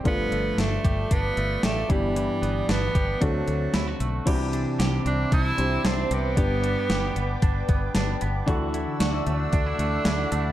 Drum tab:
CC |--------|--------|x-------|--------|
HH |xxxxxxxx|xxxxxxxx|xxxxxxxx|xxxxxxxx|
SD |--o---o-|--o---o-|--o---o-|--o---o-|
BD |o--oo--o|---oo---|o---o---|o---oo--|

CC |--------|
HH |xxxxxxxx|
SD |--o---o-|
BD |o---o---|